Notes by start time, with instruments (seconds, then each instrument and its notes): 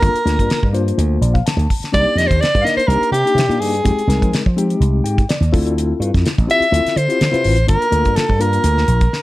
Already playing: soprano saxophone A#4
0.01 slap bass G1, reed electric piano A#3 D4 F4 A4, kick, closed hi-hat
0.16 closed hi-hat
0.25 slap bass D2, reed electric piano A#3 D4 F4 A#4, snare, closed hi-hat
0.39 slap bass G2, kick, closed hi-hat
0.50 muted slap bass stroke, snare, closed hi-hat
0.63 slap bass G2, kick
0.73 reed electric piano A#3 D4 F4 C5, closed hi-hat
0.88 closed hi-hat
0.98 slap bass D2, closed hi-hat
1.21 slap bass A#1, reed electric piano D5, closed hi-hat
1.34 reed electric piano F5, kick, closed hi-hat
1.46 reed electric piano A5, snare, closed hi-hat
1.57 slap bass D2, closed hi-hat
1.70 kick, open hi-hat
1.80 muted slap bass stroke, closed hi-hat
1.84 snare
1.92 slap bass C2, reed electric piano A#3 D4 D#4 G4, soprano saxophone D5, kick, closed hi-hat
2.15 slap bass F2, soprano saxophone D#5, closed hi-hat
2.20 snare
2.27 slap bass D#2, soprano saxophone C5, kick
2.31 closed hi-hat
2.41 soprano saxophone D5, snare, closed hi-hat
2.55 slap bass G2, kick, closed hi-hat
2.61 reed electric piano A#3 D4 D#4 A#4, soprano saxophone D#5 F5
2.67 snare, closed hi-hat
2.77 soprano saxophone C5, muted slap bass stroke, closed hi-hat
2.87 slap bass C2, reed electric piano A#3 D4 D#4 G4, soprano saxophone A#4, closed hi-hat
3.03 closed hi-hat
3.12 slap bass C3, soprano saxophone G4, closed hi-hat
3.25 reed electric piano A#3 D4 D#4 G4, closed hi-hat
3.35 slap bass C3, closed hi-hat
3.39 snare
3.49 slap bass A#2, reed electric piano A#3 D4 D#4 G4, closed hi-hat
3.60 slap bass G2, soprano saxophone G#4, open hi-hat
3.75 closed hi-hat
3.84 slap bass F2, reed electric piano G#3 C4 D#4 G4, kick, closed hi-hat
3.96 muted slap bass stroke, closed hi-hat
4.07 slap bass C2, reed electric piano G#3 C4 D#4 A#4, snare, closed hi-hat
4.22 slap bass F3, kick, closed hi-hat
4.32 muted slap bass stroke, snare, closed hi-hat
4.46 slap bass F3, kick
4.57 reed electric piano G#3 C4 D#4 G4, closed hi-hat
4.70 closed hi-hat
4.80 slap bass C2, closed hi-hat
5.04 slap bass G#2, reed electric piano G5, closed hi-hat
5.18 kick, closed hi-hat
5.29 reed electric piano D5, snare, closed hi-hat
5.41 slap bass D#2, closed hi-hat
5.52 slap bass D2, reed electric piano C4 E4 F4 A4, kick, open hi-hat
5.66 closed hi-hat
5.78 closed hi-hat
6.00 slap bass G2, closed hi-hat
6.14 slap bass F2, kick, snare, closed hi-hat
6.26 snare, closed hi-hat
6.38 slap bass A1, kick, closed hi-hat
6.47 reed electric piano C4 E4 F4 G4, soprano saxophone E5, closed hi-hat
6.60 muted slap bass stroke, closed hi-hat
6.71 slap bass D2, reed electric piano C4 E4 F4 A4, closed hi-hat
6.87 snare, closed hi-hat
6.96 slap bass D3, soprano saxophone C5, closed hi-hat
7.08 reed electric piano C4 E4 F4 G4, closed hi-hat
7.21 slap bass D3, snare, closed hi-hat
7.32 slap bass C3, reed electric piano C4 E4 F4 B4, closed hi-hat
7.44 slap bass A1, open hi-hat
7.57 closed hi-hat
7.67 slap bass G1, reed electric piano A#3 D4 F4 A4, soprano saxophone A#4, kick, closed hi-hat
7.82 closed hi-hat
7.91 slap bass D2, reed electric piano A#3 D4 F4 A4, closed hi-hat
8.05 slap bass G2, kick, closed hi-hat
8.16 soprano saxophone A4, muted slap bass stroke, snare, closed hi-hat
8.29 slap bass G2, kick
8.39 reed electric piano A#3 D4 F4 A#4, soprano saxophone A#4, closed hi-hat
8.53 closed hi-hat
8.64 slap bass D2, closed hi-hat
8.78 snare
8.88 slap bass A#1, closed hi-hat
9.01 kick, closed hi-hat
9.13 snare